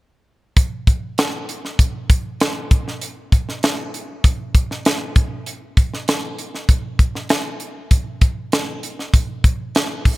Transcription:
0.57 kick medium
0.57 closed hi-hat medium
0.87 kick medium
0.87 closed hi-hat medium
1.18 snare loud
1.18 closed hi-hat medium
1.49 closed hi-hat medium
1.65 snare soft
1.79 kick medium
1.79 closed hi-hat medium
2.10 kick medium
2.10 closed hi-hat medium
2.40 snare loud
2.40 closed hi-hat medium
2.71 kick medium
2.71 closed hi-hat medium
2.88 snare soft
3.02 closed hi-hat medium
3.32 kick medium
3.32 closed hi-hat medium
3.49 snare soft
3.63 snare loud
3.63 closed hi-hat medium
3.94 closed hi-hat medium
4.24 kick medium
4.24 closed hi-hat medium
4.55 kick medium
4.55 closed hi-hat medium
4.71 snare soft
4.85 snare loud
4.85 closed hi-hat medium
5.16 kick loud
5.16 closed hi-hat medium
5.46 closed hi-hat medium
5.77 kick medium
5.77 closed hi-hat medium
5.94 snare soft
6.08 snare loud
6.08 closed hi-hat medium
6.38 closed hi-hat medium
6.55 snare soft
6.69 kick loud
6.69 closed hi-hat medium
6.99 kick medium
6.99 closed hi-hat medium
7.15 snare soft
7.29 snare loud
7.29 closed hi-hat medium
7.60 closed hi-hat medium
7.91 kick medium
7.91 closed hi-hat medium
8.21 kick medium
8.21 closed hi-hat medium
8.52 snare loud
8.52 closed hi-hat medium
8.83 closed hi-hat medium
8.99 snare soft
9.14 kick loud
9.14 closed hi-hat medium
9.44 kick medium
9.44 closed hi-hat medium
9.75 snare loud
9.75 closed hi-hat medium
10.05 kick medium
10.05 open hi-hat medium

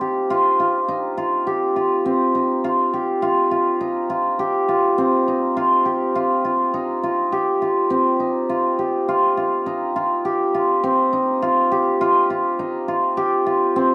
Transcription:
0.00 2.05 C4 medium
0.00 0.88 D#4 medium
0.00 0.30 F4 medium
0.00 1.46 G4 medium
0.30 0.59 F4 medium
0.60 1.17 F4 medium
0.88 2.34 D#4 medium
1.17 1.76 F4 medium
1.47 2.93 G4 medium
1.76 2.64 F4 medium
2.06 4.98 C4 medium
2.35 3.80 D#4 medium
2.64 3.22 F4 medium
2.93 4.39 G4 medium
3.22 3.51 F4 medium
3.51 4.09 F4 medium
3.81 5.27 D#4 medium
4.10 4.68 F4 medium
4.39 5.85 G4 medium
4.69 5.56 F4 medium
4.98 7.90 C4 medium
5.28 6.73 D#4 medium
5.57 6.15 F4 medium
5.85 7.32 G4 medium
6.15 6.44 F4 medium
6.45 7.03 F4 medium
6.74 8.19 D#4 medium
7.03 7.61 F4 medium
7.32 8.78 G4 medium
7.62 8.49 F4 medium
7.90 10.83 C4 medium
8.20 9.66 D#4 medium
8.49 9.08 F4 medium
8.79 10.24 G4 medium
9.08 9.37 F4 medium
9.37 9.95 F4 medium
9.66 11.12 D#4 medium
9.96 10.54 F4 medium
10.25 11.71 G4 medium
10.54 11.42 F4 medium
10.84 13.76 C4 medium
11.13 12.59 D#4 medium
11.42 12.01 F4 medium
11.72 13.17 G4 medium
12.01 12.30 F4 medium
12.30 12.88 F4 medium
12.59 13.95 D#4 medium
12.88 13.46 F4 medium
13.17 13.95 G4 medium
13.46 13.95 F4 medium
13.76 13.95 C4 medium

